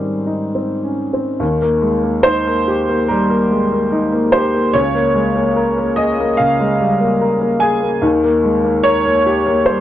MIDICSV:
0, 0, Header, 1, 2, 480
1, 0, Start_track
1, 0, Tempo, 852273
1, 789, Time_signature, 4, 2, 24, 8
1, 1742, Tempo, 823045
1, 5656, End_track
2, 0, Start_track
2, 0, Title_t, "Grand piano"
2, 0, Program_c, 0, 0
2, 0, Control_c, 0, 64, 127
2, 0, Note_on_c, 0, 51, 30
2, 0, Note_on_c, 0, 55, 35
2, 0, Note_on_c, 0, 60, 32
2, 0, Note_on_c, 0, 61, 27
2, 0, Note_on_c, 0, 63, 35
2, 0, Note_on_c, 0, 72, 54
2, 81, Note_off_c, 0, 51, 0
2, 149, Note_off_c, 0, 63, 0
2, 149, Note_on_c, 0, 63, 36
2, 243, Note_off_c, 0, 55, 0
2, 309, Note_off_c, 0, 60, 0
2, 309, Note_on_c, 0, 60, 29
2, 405, Note_off_c, 0, 63, 0
2, 472, Note_off_c, 0, 61, 0
2, 472, Note_on_c, 0, 61, 30
2, 543, Note_off_c, 0, 72, 0
2, 567, Note_off_c, 0, 60, 0
2, 632, Note_off_c, 0, 61, 0
2, 639, Note_on_c, 0, 60, 36
2, 786, Note_on_c, 0, 39, 53
2, 792, Note_on_c, 0, 51, 55
2, 793, Note_off_c, 0, 60, 0
2, 797, Control_c, 0, 64, 0
2, 896, Control_c, 0, 64, 127
2, 911, Note_on_c, 0, 58, 50
2, 1023, Note_on_c, 0, 56, 38
2, 1099, Note_off_c, 0, 58, 0
2, 1144, Note_off_c, 0, 56, 0
2, 1146, Note_on_c, 0, 58, 43
2, 1257, Note_on_c, 0, 72, 97
2, 1267, Note_on_c, 0, 63, 49
2, 1338, Note_off_c, 0, 58, 0
2, 1390, Note_on_c, 0, 58, 46
2, 1458, Note_off_c, 0, 63, 0
2, 1508, Note_on_c, 0, 67, 49
2, 1580, Note_off_c, 0, 58, 0
2, 1627, Note_on_c, 0, 58, 44
2, 1697, Note_off_c, 0, 67, 0
2, 1720, Note_off_c, 0, 39, 0
2, 1723, Note_off_c, 0, 51, 0
2, 1737, Note_on_c, 0, 70, 70
2, 1739, Note_off_c, 0, 72, 0
2, 1747, Note_on_c, 0, 55, 49
2, 1818, Note_off_c, 0, 58, 0
2, 1863, Note_on_c, 0, 58, 49
2, 1940, Note_off_c, 0, 55, 0
2, 1985, Note_on_c, 0, 56, 46
2, 2057, Note_off_c, 0, 58, 0
2, 2105, Note_off_c, 0, 56, 0
2, 2107, Note_on_c, 0, 58, 43
2, 2225, Note_on_c, 0, 63, 50
2, 2298, Note_off_c, 0, 58, 0
2, 2348, Note_on_c, 0, 58, 51
2, 2416, Note_off_c, 0, 63, 0
2, 2459, Note_on_c, 0, 72, 84
2, 2461, Note_off_c, 0, 70, 0
2, 2470, Note_on_c, 0, 67, 56
2, 2537, Note_off_c, 0, 58, 0
2, 2588, Note_on_c, 0, 58, 44
2, 2658, Note_off_c, 0, 67, 0
2, 2699, Note_on_c, 0, 73, 81
2, 2700, Note_off_c, 0, 72, 0
2, 2703, Note_on_c, 0, 37, 53
2, 2705, Note_off_c, 0, 58, 0
2, 2708, Note_on_c, 0, 49, 60
2, 2714, Control_c, 0, 64, 0
2, 2815, Control_c, 0, 64, 127
2, 2823, Note_on_c, 0, 58, 50
2, 2941, Note_on_c, 0, 56, 41
2, 3013, Note_off_c, 0, 58, 0
2, 3060, Note_off_c, 0, 56, 0
2, 3061, Note_on_c, 0, 58, 48
2, 3182, Note_on_c, 0, 70, 53
2, 3254, Note_off_c, 0, 58, 0
2, 3306, Note_on_c, 0, 58, 46
2, 3376, Note_off_c, 0, 70, 0
2, 3415, Note_on_c, 0, 75, 78
2, 3423, Note_off_c, 0, 73, 0
2, 3425, Note_on_c, 0, 68, 51
2, 3499, Note_off_c, 0, 58, 0
2, 3550, Note_on_c, 0, 58, 45
2, 3619, Note_off_c, 0, 68, 0
2, 3644, Note_off_c, 0, 37, 0
2, 3647, Note_off_c, 0, 49, 0
2, 3654, Note_on_c, 0, 77, 95
2, 3662, Note_off_c, 0, 75, 0
2, 3665, Note_on_c, 0, 49, 46
2, 3742, Note_off_c, 0, 58, 0
2, 3789, Note_on_c, 0, 56, 50
2, 3903, Note_on_c, 0, 55, 47
2, 3980, Note_off_c, 0, 56, 0
2, 4020, Note_on_c, 0, 58, 45
2, 4025, Note_off_c, 0, 55, 0
2, 4145, Note_on_c, 0, 70, 52
2, 4216, Note_off_c, 0, 58, 0
2, 4261, Note_on_c, 0, 58, 50
2, 4338, Note_off_c, 0, 70, 0
2, 4370, Note_on_c, 0, 80, 97
2, 4380, Note_off_c, 0, 77, 0
2, 4381, Note_on_c, 0, 68, 60
2, 4455, Note_off_c, 0, 58, 0
2, 4502, Note_on_c, 0, 58, 44
2, 4574, Note_off_c, 0, 68, 0
2, 4600, Note_off_c, 0, 49, 0
2, 4612, Note_on_c, 0, 39, 58
2, 4616, Note_off_c, 0, 80, 0
2, 4620, Note_on_c, 0, 51, 66
2, 4622, Note_off_c, 0, 58, 0
2, 4636, Control_c, 0, 64, 0
2, 4729, Control_c, 0, 64, 127
2, 4742, Note_on_c, 0, 58, 56
2, 4860, Note_on_c, 0, 56, 45
2, 4934, Note_off_c, 0, 58, 0
2, 4981, Note_off_c, 0, 56, 0
2, 4981, Note_on_c, 0, 58, 50
2, 5091, Note_on_c, 0, 73, 100
2, 5097, Note_on_c, 0, 70, 60
2, 5173, Note_off_c, 0, 58, 0
2, 5220, Note_on_c, 0, 58, 52
2, 5292, Note_off_c, 0, 70, 0
2, 5341, Note_on_c, 0, 67, 52
2, 5412, Note_off_c, 0, 58, 0
2, 5459, Note_on_c, 0, 58, 54
2, 5533, Note_off_c, 0, 67, 0
2, 5552, Note_off_c, 0, 39, 0
2, 5556, Note_off_c, 0, 51, 0
2, 5570, Note_on_c, 0, 72, 68
2, 5575, Note_off_c, 0, 73, 0
2, 5581, Note_on_c, 0, 55, 51
2, 5652, Note_off_c, 0, 58, 0
2, 5656, Note_off_c, 0, 55, 0
2, 5656, Note_off_c, 0, 72, 0
2, 5656, End_track
0, 0, End_of_file